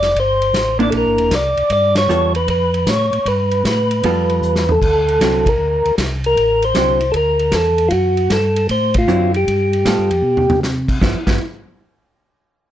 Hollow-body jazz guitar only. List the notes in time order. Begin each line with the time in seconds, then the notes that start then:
0.79 A#3 D4 E4
2.09 G3 B3 F4 A4
4.04 G3 B3 F4 A4
5.21 D3 F#3 C4 E4
6.76 D3 F#3 C4 E4
9.08 D3 F#3 C4 E4
9.86 G3 B3 F4 A4
11.01 F3 B3 E4
11.27 F3 B3 E4